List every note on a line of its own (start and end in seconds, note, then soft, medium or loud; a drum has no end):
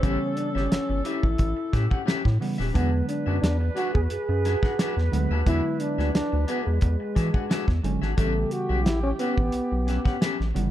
0.00 0.18 A1 loud
0.00 0.66 C#3 medium
0.00 0.66 E3 medium
0.00 0.67 G3 medium
0.00 0.67 B3 medium
0.00 0.38 C#4 loud
0.00 0.17 C#4 medium
0.00 0.18 G4 medium
0.00 2.37 A4 medium
0.00 kick loud
0.00 closed hi-hat medium
0.04 0.18 B4 medium
0.04 0.18 E5 medium
0.36 0.56 D4 medium
0.36 muted clean electric guitar stroke soft
0.36 closed hi-hat medium
0.55 0.68 G1 medium
0.55 1.05 C#4 medium
0.55 0.66 C#4 soft
0.55 0.66 G4 medium
0.55 0.65 B4 medium
0.55 0.65 E5 medium
0.55 snare soft
0.71 0.79 G1 soft
0.71 muted clean electric guitar stroke soft
0.71 snare loud
0.71 closed hi-hat medium
0.89 1.02 G1 medium
0.89 muted clean electric guitar stroke medium
1.04 1.19 C#4 medium
1.04 2.03 E4 medium
1.04 1.19 G4 medium
1.04 1.20 B4 medium
1.04 1.20 E5 medium
1.04 closed hi-hat medium
1.23 1.36 A1 medium
1.23 muted clean electric guitar stroke soft
1.23 kick medium
1.38 1.54 A1 loud
1.38 muted clean electric guitar stroke soft
1.38 kick loud
1.38 closed hi-hat medium
1.57 muted clean electric guitar stroke soft
1.73 1.88 A2 medium
1.73 1.84 C#4 medium
1.73 1.84 G4 medium
1.73 1.85 B4 medium
1.73 1.85 E5 medium
1.73 kick medium
1.73 snare soft
1.73 closed hi-hat medium
1.90 2.02 C#4 soft
1.90 2.01 G4 medium
1.90 2.01 B4 medium
1.90 2.01 F#5 medium
1.90 kick loud
2.06 2.21 C#4 loud
2.06 2.21 G4 loud
2.06 2.21 B4 medium
2.06 2.22 E5 loud
2.06 snare loud
2.06 closed hi-hat medium
2.25 2.38 A2 loud
2.25 kick medium
2.25 snare soft
2.40 2.57 C#3 medium
2.40 2.57 E3 medium
2.40 2.58 G3 medium
2.40 2.58 B3 loud
2.40 muted clean electric guitar stroke soft
2.40 open hi-hat medium
2.58 2.72 D#1 medium
2.58 2.70 C#4 medium
2.58 2.69 G4 medium
2.58 2.69 B4 medium
2.58 2.69 E5 medium
2.58 snare soft
2.74 3.02 E2 loud
2.74 3.38 D3 medium
2.74 3.38 F#3 medium
2.74 3.39 G#3 medium
2.74 3.06 B3 medium
2.74 3.39 B3 medium
2.74 2.89 D4 medium
2.74 2.89 F#4 medium
2.74 2.90 G#4 medium
2.74 7.81 B4 medium
2.74 2.90 E5 medium
2.74 kick loud
2.74 closed hi-hat medium
3.08 3.40 D4 medium
3.08 muted clean electric guitar stroke soft
3.08 closed hi-hat medium
3.26 3.40 F#2 medium
3.26 3.37 D4 medium
3.26 3.37 F#4 medium
3.26 3.37 G#4 medium
3.26 3.36 E5 medium
3.42 3.70 E2 medium
3.42 3.57 D4 medium
3.42 muted clean electric guitar stroke soft
3.42 snare loud
3.42 closed hi-hat medium
3.60 muted clean electric guitar stroke medium
3.76 3.91 D4 medium
3.76 3.93 F#4 loud
3.76 3.91 F#4 medium
3.76 3.91 G#4 medium
3.76 3.92 E5 loud
3.76 closed hi-hat medium
3.94 4.08 E2 medium
3.94 4.01 G#4 medium
3.94 muted clean electric guitar stroke soft
3.94 kick loud
4.10 4.18 F#2 soft
4.10 5.09 G#4 medium
4.10 muted clean electric guitar stroke soft
4.10 closed hi-hat medium
4.29 4.56 F#2 loud
4.29 muted clean electric guitar stroke medium
4.45 4.56 D4 medium
4.45 4.56 F#4 medium
4.45 4.57 G#4 medium
4.45 4.57 E5 medium
4.45 snare soft
4.45 closed hi-hat medium
4.63 4.74 D4 soft
4.63 4.74 F#4 medium
4.63 4.73 G#4 medium
4.63 4.73 F#5 medium
4.63 kick loud
4.63 snare soft
4.79 4.93 D4 medium
4.79 4.93 F#4 loud
4.79 4.94 G#4 loud
4.79 4.94 E5 loud
4.79 snare loud
4.79 closed hi-hat loud
4.97 5.09 E2 loud
4.97 snare soft
5.11 5.27 D2 medium
5.11 5.29 D3 medium
5.11 5.29 F#3 medium
5.11 5.29 G#3 medium
5.11 5.29 B3 loud
5.11 muted clean electric guitar stroke soft
5.11 closed hi-hat medium
5.31 5.43 D#2 medium
5.31 5.42 D4 medium
5.31 5.41 F#4 medium
5.31 5.41 G#4 medium
5.31 5.41 E5 medium
5.45 5.61 E2 loud
5.45 6.09 D3 medium
5.45 6.10 F#3 medium
5.45 6.10 G#3 medium
5.45 6.10 B3 medium
5.45 5.61 D4 medium
5.45 5.82 E4 loud
5.45 5.61 F#4 medium
5.45 5.61 G#4 medium
5.45 5.62 E5 loud
5.45 kick loud
5.45 closed hi-hat medium
5.80 6.13 D4 loud
5.80 muted clean electric guitar stroke soft
5.80 closed hi-hat medium
5.98 6.11 D2 medium
5.98 6.09 D4 medium
5.98 6.09 F#4 medium
5.98 6.09 G#4 medium
5.98 6.08 E5 medium
5.98 snare soft
6.14 6.22 D2 soft
6.14 6.46 D4 loud
6.14 muted clean electric guitar stroke soft
6.14 snare loud
6.14 closed hi-hat medium
6.32 6.46 D2 loud
6.32 muted clean electric guitar stroke soft
6.48 6.68 B3 medium
6.48 6.62 D4 medium
6.48 6.63 F#4 medium
6.48 6.63 G#4 loud
6.48 6.63 E5 loud
6.48 closed hi-hat medium
6.66 6.79 E2 medium
6.66 6.82 G#3 medium
6.66 muted clean electric guitar stroke soft
6.81 6.97 E2 loud
6.81 7.80 G#3 medium
6.81 muted clean electric guitar stroke soft
6.81 kick medium
6.81 closed hi-hat medium
7.00 muted clean electric guitar stroke medium
7.15 7.31 E3 medium
7.15 7.27 D4 medium
7.15 7.27 F#4 medium
7.15 7.28 G#4 medium
7.15 7.28 E5 medium
7.15 kick medium
7.15 snare soft
7.15 closed hi-hat medium
7.34 7.45 D4 medium
7.34 7.45 F#4 medium
7.34 7.44 G#4 medium
7.34 7.44 F#5 medium
7.34 kick loud
7.49 7.64 D4 medium
7.49 7.65 F#4 medium
7.49 7.65 G#4 medium
7.49 7.65 E5 medium
7.49 snare loud
7.49 closed hi-hat loud
7.68 7.81 E2 medium
7.68 kick medium
7.68 snare soft
7.83 7.98 G1 medium
7.83 8.00 D3 medium
7.83 8.01 F#3 medium
7.83 8.01 G#3 medium
7.83 8.01 C#4 medium
7.83 muted clean electric guitar stroke medium
7.83 closed hi-hat medium
8.02 8.15 G#1 medium
8.02 8.13 D4 medium
8.02 8.12 F#4 medium
8.02 8.12 G#4 medium
8.02 8.12 E5 medium
8.02 snare soft
8.17 8.45 A1 loud
8.17 8.81 C#3 medium
8.17 8.81 E3 medium
8.17 8.81 G3 medium
8.17 8.53 A3 loud
8.17 8.25 A3 medium
8.17 8.32 C#4 medium
8.17 8.32 G4 medium
8.17 10.52 G4 medium
8.17 8.33 B4 medium
8.17 8.33 E5 loud
8.17 kick loud
8.17 closed hi-hat medium
8.25 8.85 B3 medium
8.51 8.87 F#4 medium
8.51 muted clean electric guitar stroke soft
8.51 closed hi-hat medium
8.69 8.87 B1 loud
8.69 8.81 C#4 medium
8.69 8.80 G4 medium
8.69 8.80 B4 medium
8.69 8.80 E5 medium
8.85 9.13 A1 medium
8.85 9.03 E4 loud
8.85 muted clean electric guitar stroke soft
8.85 snare loud
8.85 closed hi-hat medium
9.03 9.11 C#4 medium
9.03 muted clean electric guitar stroke soft
9.19 10.51 B3 medium
9.19 9.34 C#4 medium
9.19 9.34 G4 loud
9.19 9.35 B4 medium
9.19 9.35 E5 medium
9.19 closed hi-hat medium
9.37 9.50 A1 medium
9.37 muted clean electric guitar stroke soft
9.37 kick medium
9.52 9.61 B1 soft
9.52 muted clean electric guitar stroke soft
9.52 closed hi-hat medium
9.71 9.99 B1 loud
9.71 muted clean electric guitar stroke soft
9.87 9.99 C#4 medium
9.87 9.99 G4 medium
9.87 9.99 B4 medium
9.87 10.00 E5 medium
9.87 snare soft
9.87 closed hi-hat medium
10.05 10.16 C#4 medium
10.05 10.16 G4 medium
10.05 10.16 B4 medium
10.05 10.15 F#5 medium
10.05 kick loud
10.05 snare soft
10.21 10.36 C#4 medium
10.21 10.36 G4 loud
10.21 10.36 B4 loud
10.21 10.37 E5 loud
10.21 snare loud
10.21 closed hi-hat loud
10.40 10.53 A1 medium
10.40 snare soft
10.54 10.70 G1 loud
10.54 10.71 C#3 medium
10.54 10.71 E3 medium
10.54 10.71 G3 medium
10.54 10.71 B3 medium
10.54 muted clean electric guitar stroke soft
10.54 closed hi-hat medium